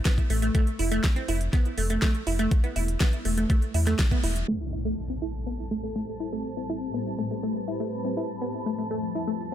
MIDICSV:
0, 0, Header, 1, 7, 480
1, 0, Start_track
1, 0, Key_signature, 0, "minor"
1, 0, Tempo, 491803
1, 534, Time_signature, 4, 2, 24, 8
1, 9316, End_track
2, 0, Start_track
2, 0, Title_t, "Synth texture"
2, 0, Program_c, 0, 99
2, 4374, Note_on_c, 0, 81, 88
2, 9316, Note_off_c, 0, 81, 0
2, 9316, End_track
3, 0, Start_track
3, 0, Title_t, "Ambient pad"
3, 0, Program_c, 1, 92
3, 4373, Note_on_c, 1, 60, 74
3, 4374, Note_on_c, 1, 45, 78
3, 4374, Note_on_c, 1, 55, 70
3, 4374, Note_on_c, 1, 69, 88
3, 6275, Note_off_c, 1, 69, 0
3, 6293, Note_on_c, 1, 71, 89
3, 8175, Note_off_c, 1, 60, 0
3, 8176, Note_off_c, 1, 45, 0
3, 8176, Note_off_c, 1, 55, 0
3, 8195, Note_off_c, 1, 71, 0
3, 8212, Note_on_c, 1, 41, 79
3, 8212, Note_on_c, 1, 53, 74
3, 8212, Note_on_c, 1, 64, 72
3, 8212, Note_on_c, 1, 69, 87
3, 9316, Note_off_c, 1, 41, 0
3, 9316, Note_off_c, 1, 53, 0
3, 9316, Note_off_c, 1, 64, 0
3, 9316, Note_off_c, 1, 69, 0
3, 9316, End_track
4, 0, Start_track
4, 0, Title_t, "Synth arpeggio sound"
4, 0, Program_c, 2, 84
4, 54, Note_on_c, 2, 59, 81
4, 112, Note_off_c, 2, 59, 0
4, 294, Note_on_c, 2, 57, 78
4, 352, Note_off_c, 2, 57, 0
4, 413, Note_on_c, 2, 57, 76
4, 472, Note_off_c, 2, 57, 0
4, 533, Note_on_c, 2, 57, 102
4, 621, Note_off_c, 2, 57, 0
4, 774, Note_on_c, 2, 64, 78
4, 832, Note_off_c, 2, 64, 0
4, 893, Note_on_c, 2, 57, 104
4, 952, Note_off_c, 2, 57, 0
4, 1133, Note_on_c, 2, 60, 78
4, 1192, Note_off_c, 2, 60, 0
4, 1254, Note_on_c, 2, 64, 78
4, 1312, Note_off_c, 2, 64, 0
4, 1494, Note_on_c, 2, 59, 82
4, 1553, Note_off_c, 2, 59, 0
4, 1734, Note_on_c, 2, 57, 77
4, 1792, Note_off_c, 2, 57, 0
4, 1855, Note_on_c, 2, 57, 77
4, 1913, Note_off_c, 2, 57, 0
4, 1974, Note_on_c, 2, 57, 100
4, 2062, Note_off_c, 2, 57, 0
4, 2214, Note_on_c, 2, 64, 76
4, 2272, Note_off_c, 2, 64, 0
4, 2334, Note_on_c, 2, 57, 103
4, 2392, Note_off_c, 2, 57, 0
4, 2574, Note_on_c, 2, 59, 76
4, 2632, Note_off_c, 2, 59, 0
4, 2694, Note_on_c, 2, 64, 79
4, 2752, Note_off_c, 2, 64, 0
4, 2934, Note_on_c, 2, 59, 87
4, 2993, Note_off_c, 2, 59, 0
4, 3174, Note_on_c, 2, 57, 78
4, 3233, Note_off_c, 2, 57, 0
4, 3295, Note_on_c, 2, 57, 73
4, 3353, Note_off_c, 2, 57, 0
4, 3415, Note_on_c, 2, 57, 96
4, 3502, Note_off_c, 2, 57, 0
4, 3655, Note_on_c, 2, 64, 73
4, 3713, Note_off_c, 2, 64, 0
4, 3775, Note_on_c, 2, 57, 101
4, 3833, Note_off_c, 2, 57, 0
4, 4015, Note_on_c, 2, 59, 75
4, 4073, Note_off_c, 2, 59, 0
4, 4134, Note_on_c, 2, 64, 76
4, 4193, Note_off_c, 2, 64, 0
4, 4374, Note_on_c, 2, 57, 101
4, 4462, Note_off_c, 2, 57, 0
4, 4614, Note_on_c, 2, 64, 74
4, 4673, Note_off_c, 2, 64, 0
4, 4734, Note_on_c, 2, 57, 99
4, 4792, Note_off_c, 2, 57, 0
4, 4975, Note_on_c, 2, 60, 74
4, 5033, Note_off_c, 2, 60, 0
4, 5094, Note_on_c, 2, 64, 72
4, 5153, Note_off_c, 2, 64, 0
4, 5334, Note_on_c, 2, 59, 78
4, 5392, Note_off_c, 2, 59, 0
4, 5574, Note_on_c, 2, 57, 74
4, 5632, Note_off_c, 2, 57, 0
4, 5694, Note_on_c, 2, 57, 75
4, 5752, Note_off_c, 2, 57, 0
4, 5814, Note_on_c, 2, 57, 93
4, 5901, Note_off_c, 2, 57, 0
4, 6054, Note_on_c, 2, 64, 74
4, 6112, Note_off_c, 2, 64, 0
4, 6174, Note_on_c, 2, 57, 97
4, 6232, Note_off_c, 2, 57, 0
4, 6414, Note_on_c, 2, 60, 73
4, 6472, Note_off_c, 2, 60, 0
4, 6534, Note_on_c, 2, 64, 74
4, 6592, Note_off_c, 2, 64, 0
4, 6774, Note_on_c, 2, 59, 82
4, 6832, Note_off_c, 2, 59, 0
4, 7014, Note_on_c, 2, 57, 74
4, 7072, Note_off_c, 2, 57, 0
4, 7134, Note_on_c, 2, 57, 72
4, 7193, Note_off_c, 2, 57, 0
4, 7254, Note_on_c, 2, 57, 97
4, 7342, Note_off_c, 2, 57, 0
4, 7494, Note_on_c, 2, 64, 72
4, 7552, Note_off_c, 2, 64, 0
4, 7614, Note_on_c, 2, 57, 96
4, 7672, Note_off_c, 2, 57, 0
4, 7855, Note_on_c, 2, 60, 73
4, 7913, Note_off_c, 2, 60, 0
4, 7974, Note_on_c, 2, 64, 74
4, 8033, Note_off_c, 2, 64, 0
4, 8213, Note_on_c, 2, 59, 81
4, 8272, Note_off_c, 2, 59, 0
4, 8454, Note_on_c, 2, 57, 74
4, 8512, Note_off_c, 2, 57, 0
4, 8574, Note_on_c, 2, 57, 75
4, 8632, Note_off_c, 2, 57, 0
4, 8693, Note_on_c, 2, 57, 103
4, 8781, Note_off_c, 2, 57, 0
4, 8933, Note_on_c, 2, 64, 77
4, 8992, Note_off_c, 2, 64, 0
4, 9053, Note_on_c, 2, 57, 98
4, 9112, Note_off_c, 2, 57, 0
4, 9316, End_track
5, 0, Start_track
5, 0, Title_t, "Analog synth bass"
5, 0, Program_c, 3, 38
5, 293, Note_on_c, 3, 33, 82
5, 493, Note_off_c, 3, 33, 0
5, 774, Note_on_c, 3, 29, 98
5, 974, Note_off_c, 3, 29, 0
5, 1253, Note_on_c, 3, 29, 92
5, 1453, Note_off_c, 3, 29, 0
5, 1733, Note_on_c, 3, 29, 79
5, 1934, Note_off_c, 3, 29, 0
5, 2214, Note_on_c, 3, 29, 82
5, 2414, Note_off_c, 3, 29, 0
5, 2694, Note_on_c, 3, 28, 100
5, 2894, Note_off_c, 3, 28, 0
5, 3173, Note_on_c, 3, 28, 95
5, 3373, Note_off_c, 3, 28, 0
5, 3654, Note_on_c, 3, 40, 83
5, 3854, Note_off_c, 3, 40, 0
5, 4134, Note_on_c, 3, 28, 93
5, 4334, Note_off_c, 3, 28, 0
5, 9316, End_track
6, 0, Start_track
6, 0, Title_t, "Impact"
6, 0, Program_c, 4, 103
6, 4374, Note_on_c, 4, 60, 65
6, 6294, Note_off_c, 4, 60, 0
6, 9316, End_track
7, 0, Start_track
7, 0, Title_t, "Drums"
7, 52, Note_on_c, 9, 38, 114
7, 53, Note_on_c, 9, 42, 52
7, 54, Note_on_c, 9, 36, 111
7, 150, Note_off_c, 9, 38, 0
7, 151, Note_off_c, 9, 42, 0
7, 152, Note_off_c, 9, 36, 0
7, 174, Note_on_c, 9, 42, 26
7, 175, Note_on_c, 9, 36, 58
7, 272, Note_off_c, 9, 36, 0
7, 272, Note_off_c, 9, 42, 0
7, 293, Note_on_c, 9, 46, 97
7, 391, Note_off_c, 9, 46, 0
7, 413, Note_on_c, 9, 42, 49
7, 511, Note_off_c, 9, 42, 0
7, 533, Note_on_c, 9, 42, 54
7, 534, Note_on_c, 9, 36, 116
7, 631, Note_off_c, 9, 42, 0
7, 632, Note_off_c, 9, 36, 0
7, 654, Note_on_c, 9, 42, 28
7, 751, Note_off_c, 9, 42, 0
7, 773, Note_on_c, 9, 46, 99
7, 871, Note_off_c, 9, 46, 0
7, 894, Note_on_c, 9, 42, 54
7, 992, Note_off_c, 9, 42, 0
7, 1013, Note_on_c, 9, 38, 114
7, 1014, Note_on_c, 9, 36, 108
7, 1014, Note_on_c, 9, 42, 54
7, 1110, Note_off_c, 9, 38, 0
7, 1111, Note_off_c, 9, 42, 0
7, 1112, Note_off_c, 9, 36, 0
7, 1134, Note_on_c, 9, 42, 27
7, 1232, Note_off_c, 9, 42, 0
7, 1253, Note_on_c, 9, 46, 99
7, 1351, Note_off_c, 9, 46, 0
7, 1374, Note_on_c, 9, 42, 52
7, 1472, Note_off_c, 9, 42, 0
7, 1492, Note_on_c, 9, 38, 34
7, 1493, Note_on_c, 9, 42, 50
7, 1494, Note_on_c, 9, 36, 113
7, 1590, Note_off_c, 9, 38, 0
7, 1591, Note_off_c, 9, 42, 0
7, 1592, Note_off_c, 9, 36, 0
7, 1614, Note_on_c, 9, 42, 27
7, 1712, Note_off_c, 9, 42, 0
7, 1733, Note_on_c, 9, 46, 99
7, 1831, Note_off_c, 9, 46, 0
7, 1854, Note_on_c, 9, 42, 56
7, 1951, Note_off_c, 9, 42, 0
7, 1972, Note_on_c, 9, 38, 115
7, 1973, Note_on_c, 9, 42, 55
7, 1974, Note_on_c, 9, 36, 111
7, 2070, Note_off_c, 9, 38, 0
7, 2071, Note_off_c, 9, 42, 0
7, 2072, Note_off_c, 9, 36, 0
7, 2094, Note_on_c, 9, 42, 26
7, 2191, Note_off_c, 9, 42, 0
7, 2214, Note_on_c, 9, 46, 99
7, 2311, Note_off_c, 9, 46, 0
7, 2334, Note_on_c, 9, 42, 53
7, 2431, Note_off_c, 9, 42, 0
7, 2454, Note_on_c, 9, 36, 118
7, 2454, Note_on_c, 9, 42, 58
7, 2551, Note_off_c, 9, 42, 0
7, 2552, Note_off_c, 9, 36, 0
7, 2574, Note_on_c, 9, 42, 28
7, 2672, Note_off_c, 9, 42, 0
7, 2694, Note_on_c, 9, 46, 96
7, 2791, Note_off_c, 9, 46, 0
7, 2814, Note_on_c, 9, 42, 56
7, 2912, Note_off_c, 9, 42, 0
7, 2932, Note_on_c, 9, 38, 119
7, 2933, Note_on_c, 9, 42, 53
7, 2934, Note_on_c, 9, 36, 117
7, 3030, Note_off_c, 9, 38, 0
7, 3031, Note_off_c, 9, 42, 0
7, 3032, Note_off_c, 9, 36, 0
7, 3054, Note_on_c, 9, 42, 28
7, 3151, Note_off_c, 9, 42, 0
7, 3173, Note_on_c, 9, 46, 100
7, 3271, Note_off_c, 9, 46, 0
7, 3294, Note_on_c, 9, 42, 55
7, 3391, Note_off_c, 9, 42, 0
7, 3414, Note_on_c, 9, 36, 114
7, 3414, Note_on_c, 9, 42, 53
7, 3512, Note_off_c, 9, 36, 0
7, 3512, Note_off_c, 9, 42, 0
7, 3534, Note_on_c, 9, 42, 28
7, 3632, Note_off_c, 9, 42, 0
7, 3654, Note_on_c, 9, 46, 104
7, 3752, Note_off_c, 9, 46, 0
7, 3773, Note_on_c, 9, 38, 38
7, 3774, Note_on_c, 9, 42, 57
7, 3871, Note_off_c, 9, 38, 0
7, 3872, Note_off_c, 9, 42, 0
7, 3893, Note_on_c, 9, 38, 119
7, 3894, Note_on_c, 9, 36, 112
7, 3894, Note_on_c, 9, 42, 55
7, 3990, Note_off_c, 9, 38, 0
7, 3992, Note_off_c, 9, 36, 0
7, 3992, Note_off_c, 9, 42, 0
7, 4014, Note_on_c, 9, 42, 27
7, 4015, Note_on_c, 9, 36, 58
7, 4112, Note_off_c, 9, 36, 0
7, 4112, Note_off_c, 9, 42, 0
7, 4133, Note_on_c, 9, 46, 99
7, 4231, Note_off_c, 9, 46, 0
7, 4254, Note_on_c, 9, 42, 55
7, 4351, Note_off_c, 9, 42, 0
7, 4374, Note_on_c, 9, 49, 81
7, 4375, Note_on_c, 9, 82, 43
7, 4472, Note_off_c, 9, 49, 0
7, 4473, Note_off_c, 9, 82, 0
7, 4614, Note_on_c, 9, 82, 72
7, 4712, Note_off_c, 9, 82, 0
7, 4735, Note_on_c, 9, 82, 30
7, 4832, Note_off_c, 9, 82, 0
7, 4854, Note_on_c, 9, 82, 42
7, 4952, Note_off_c, 9, 82, 0
7, 4975, Note_on_c, 9, 82, 21
7, 5072, Note_off_c, 9, 82, 0
7, 5094, Note_on_c, 9, 82, 71
7, 5192, Note_off_c, 9, 82, 0
7, 5215, Note_on_c, 9, 82, 30
7, 5313, Note_off_c, 9, 82, 0
7, 5334, Note_on_c, 9, 82, 39
7, 5432, Note_off_c, 9, 82, 0
7, 5455, Note_on_c, 9, 82, 21
7, 5552, Note_off_c, 9, 82, 0
7, 5574, Note_on_c, 9, 82, 73
7, 5672, Note_off_c, 9, 82, 0
7, 5695, Note_on_c, 9, 82, 32
7, 5792, Note_off_c, 9, 82, 0
7, 5815, Note_on_c, 9, 82, 42
7, 5912, Note_off_c, 9, 82, 0
7, 5935, Note_on_c, 9, 82, 20
7, 6033, Note_off_c, 9, 82, 0
7, 6055, Note_on_c, 9, 82, 69
7, 6152, Note_off_c, 9, 82, 0
7, 6175, Note_on_c, 9, 82, 31
7, 6273, Note_off_c, 9, 82, 0
7, 6294, Note_on_c, 9, 82, 41
7, 6392, Note_off_c, 9, 82, 0
7, 6415, Note_on_c, 9, 82, 20
7, 6512, Note_off_c, 9, 82, 0
7, 6534, Note_on_c, 9, 82, 69
7, 6632, Note_off_c, 9, 82, 0
7, 6655, Note_on_c, 9, 82, 30
7, 6752, Note_off_c, 9, 82, 0
7, 6774, Note_on_c, 9, 82, 40
7, 6872, Note_off_c, 9, 82, 0
7, 6895, Note_on_c, 9, 82, 19
7, 6992, Note_off_c, 9, 82, 0
7, 7014, Note_on_c, 9, 82, 70
7, 7112, Note_off_c, 9, 82, 0
7, 7135, Note_on_c, 9, 82, 29
7, 7232, Note_off_c, 9, 82, 0
7, 7255, Note_on_c, 9, 82, 39
7, 7352, Note_off_c, 9, 82, 0
7, 7375, Note_on_c, 9, 82, 20
7, 7473, Note_off_c, 9, 82, 0
7, 7495, Note_on_c, 9, 82, 69
7, 7592, Note_off_c, 9, 82, 0
7, 7615, Note_on_c, 9, 82, 30
7, 7713, Note_off_c, 9, 82, 0
7, 7735, Note_on_c, 9, 82, 41
7, 7832, Note_off_c, 9, 82, 0
7, 7855, Note_on_c, 9, 82, 19
7, 7952, Note_off_c, 9, 82, 0
7, 7975, Note_on_c, 9, 82, 68
7, 8072, Note_off_c, 9, 82, 0
7, 8095, Note_on_c, 9, 82, 30
7, 8193, Note_off_c, 9, 82, 0
7, 8215, Note_on_c, 9, 82, 41
7, 8312, Note_off_c, 9, 82, 0
7, 8335, Note_on_c, 9, 82, 20
7, 8433, Note_off_c, 9, 82, 0
7, 8455, Note_on_c, 9, 82, 68
7, 8552, Note_off_c, 9, 82, 0
7, 8576, Note_on_c, 9, 82, 28
7, 8673, Note_off_c, 9, 82, 0
7, 8695, Note_on_c, 9, 82, 38
7, 8793, Note_off_c, 9, 82, 0
7, 8816, Note_on_c, 9, 82, 19
7, 8913, Note_off_c, 9, 82, 0
7, 8935, Note_on_c, 9, 82, 68
7, 9033, Note_off_c, 9, 82, 0
7, 9055, Note_on_c, 9, 82, 29
7, 9153, Note_off_c, 9, 82, 0
7, 9175, Note_on_c, 9, 82, 38
7, 9272, Note_off_c, 9, 82, 0
7, 9316, End_track
0, 0, End_of_file